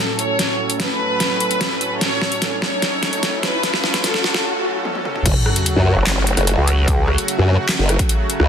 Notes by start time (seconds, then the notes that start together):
Already playing: A2 F#3 C#4 A4, riser
0.19 C#5, closed hi-hat
0.39 snare, closed hi-hat
0.70 closed hi-hat
0.80 B4, snare, closed hi-hat
1.20 snare, closed hi-hat
1.40 closed hi-hat
1.51 closed hi-hat
1.61 snare, closed hi-hat
1.81 closed hi-hat
2.01 C#5, snare, closed hi-hat
2.22 snare
2.32 closed hi-hat
2.42 snare, closed hi-hat
2.62 C#5, snare
2.82 snare, closed hi-hat
3.03 snare, closed hi-hat
3.13 closed hi-hat
3.23 snare, closed hi-hat
3.43 B4, snare, closed hi-hat
3.63 snare, closed hi-hat
3.74 snare
3.84 snare
3.94 snare, closed hi-hat
4.04 A4, snare, closed hi-hat
4.14 snare
4.24 snare
4.34 snare
4.85 high tom
4.95 high tom
5.05 mid tom
5.16 mid tom
5.26 F#1 C#3 F#3 A3 F#4, kick, closed hi-hat, crash, sub drop
5.46 cross-stick
5.56 closed hi-hat
5.66 closed hi-hat
5.76 F#2
5.97 F#1
6.07 snare, clap, closed hi-hat
6.27 closed hi-hat
6.37 F#1, cross-stick, closed hi-hat
6.47 closed hi-hat
6.57 C#2
6.68 closed hi-hat
6.88 kick, closed hi-hat
7.08 cross-stick
7.18 closed hi-hat
7.28 closed hi-hat
7.38 F#2
7.69 snare, clap, closed hi-hat
7.79 F#1
7.89 cross-stick, closed hi-hat
7.99 kick, closed hi-hat
8.09 closed hi-hat
8.30 closed hi-hat
8.40 C#2, cross-stick